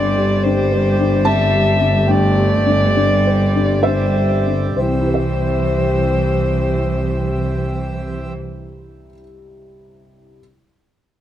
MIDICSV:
0, 0, Header, 1, 6, 480
1, 0, Start_track
1, 0, Key_signature, 0, "major"
1, 0, Tempo, 814111
1, 1228, Time_signature, 3, 2, 24, 8
1, 1228, Tempo, 875912
1, 2188, Tempo, 934579
1, 5974, End_track
2, 0, Start_track
2, 0, Title_t, "Violin"
2, 0, Program_c, 0, 40
2, 0, Note_on_c, 0, 74, 86
2, 260, Note_on_c, 0, 72, 93
2, 269, Note_off_c, 0, 74, 0
2, 741, Note_on_c, 0, 76, 92
2, 750, Note_off_c, 0, 72, 0
2, 1241, Note_on_c, 0, 74, 92
2, 1249, Note_off_c, 0, 76, 0
2, 2191, Note_off_c, 0, 74, 0
2, 2194, Note_on_c, 0, 72, 75
2, 2545, Note_off_c, 0, 72, 0
2, 2669, Note_on_c, 0, 72, 75
2, 4498, Note_off_c, 0, 72, 0
2, 5974, End_track
3, 0, Start_track
3, 0, Title_t, "Harmonium"
3, 0, Program_c, 1, 20
3, 0, Note_on_c, 1, 60, 85
3, 0, Note_on_c, 1, 67, 78
3, 0, Note_on_c, 1, 74, 84
3, 2656, Note_off_c, 1, 60, 0
3, 2658, Note_off_c, 1, 67, 0
3, 2667, Note_on_c, 1, 76, 72
3, 2670, Note_on_c, 1, 60, 70
3, 2670, Note_on_c, 1, 67, 69
3, 2676, Note_off_c, 1, 74, 0
3, 4497, Note_off_c, 1, 76, 0
3, 4498, Note_off_c, 1, 60, 0
3, 4499, Note_off_c, 1, 67, 0
3, 5974, End_track
4, 0, Start_track
4, 0, Title_t, "Cello"
4, 0, Program_c, 2, 42
4, 13, Note_on_c, 2, 55, 83
4, 1196, Note_off_c, 2, 55, 0
4, 1218, Note_on_c, 2, 57, 88
4, 1697, Note_on_c, 2, 55, 84
4, 1705, Note_off_c, 2, 57, 0
4, 2182, Note_off_c, 2, 55, 0
4, 2185, Note_on_c, 2, 55, 77
4, 2541, Note_off_c, 2, 55, 0
4, 2672, Note_on_c, 2, 52, 77
4, 4499, Note_off_c, 2, 52, 0
4, 5974, End_track
5, 0, Start_track
5, 0, Title_t, "Felt piano"
5, 0, Program_c, 3, 0
5, 0, Control_c, 3, 64, 127
5, 0, Note_on_c, 3, 43, 77
5, 0, Note_on_c, 3, 50, 74
5, 0, Note_on_c, 3, 84, 111
5, 101, Note_on_c, 3, 55, 71
5, 198, Note_off_c, 3, 50, 0
5, 266, Note_on_c, 3, 62, 69
5, 353, Note_off_c, 3, 55, 0
5, 425, Note_on_c, 3, 72, 74
5, 515, Note_off_c, 3, 62, 0
5, 588, Note_on_c, 3, 62, 69
5, 676, Note_off_c, 3, 72, 0
5, 711, Note_off_c, 3, 84, 0
5, 736, Note_on_c, 3, 81, 127
5, 743, Note_on_c, 3, 50, 65
5, 840, Note_off_c, 3, 62, 0
5, 906, Note_on_c, 3, 55, 72
5, 1000, Note_off_c, 3, 50, 0
5, 1065, Note_on_c, 3, 50, 64
5, 1165, Note_off_c, 3, 55, 0
5, 1203, Note_off_c, 3, 43, 0
5, 1203, Note_off_c, 3, 81, 0
5, 1225, Note_on_c, 3, 79, 102
5, 1233, Note_on_c, 3, 43, 91
5, 1239, Control_c, 3, 64, 0
5, 1321, Note_off_c, 3, 50, 0
5, 1342, Control_c, 3, 64, 127
5, 1382, Note_on_c, 3, 55, 70
5, 1546, Note_on_c, 3, 50, 72
5, 1632, Note_off_c, 3, 55, 0
5, 1709, Note_on_c, 3, 62, 69
5, 1796, Note_off_c, 3, 50, 0
5, 1872, Note_on_c, 3, 72, 65
5, 1961, Note_off_c, 3, 62, 0
5, 2034, Note_on_c, 3, 62, 63
5, 2127, Note_off_c, 3, 72, 0
5, 2164, Note_off_c, 3, 79, 0
5, 2184, Note_on_c, 3, 76, 92
5, 2204, Note_on_c, 3, 50, 53
5, 2289, Note_off_c, 3, 62, 0
5, 2357, Note_on_c, 3, 55, 54
5, 2453, Note_off_c, 3, 50, 0
5, 2515, Note_on_c, 3, 50, 49
5, 2612, Note_off_c, 3, 55, 0
5, 2649, Note_off_c, 3, 76, 0
5, 2653, Note_off_c, 3, 43, 0
5, 2665, Note_on_c, 3, 72, 75
5, 2674, Note_off_c, 3, 50, 0
5, 2680, Note_on_c, 3, 36, 57
5, 2682, Control_c, 3, 64, 0
5, 2715, Note_on_c, 3, 48, 58
5, 2753, Note_on_c, 3, 55, 57
5, 2784, Note_on_c, 3, 64, 55
5, 2788, Control_c, 3, 64, 127
5, 2813, Note_off_c, 3, 72, 0
5, 2821, Note_on_c, 3, 72, 54
5, 2859, Note_on_c, 3, 76, 54
5, 4863, Note_off_c, 3, 36, 0
5, 4880, Note_off_c, 3, 48, 0
5, 4899, Note_off_c, 3, 55, 0
5, 4915, Note_off_c, 3, 64, 0
5, 4933, Note_off_c, 3, 72, 0
5, 4952, Note_off_c, 3, 76, 0
5, 5559, Control_c, 3, 64, 0
5, 5974, End_track
6, 0, Start_track
6, 0, Title_t, "Double bass"
6, 0, Program_c, 4, 43
6, 0, Note_on_c, 4, 31, 98
6, 2667, Note_off_c, 4, 31, 0
6, 2670, Note_on_c, 4, 36, 85
6, 4499, Note_off_c, 4, 36, 0
6, 5974, End_track
0, 0, End_of_file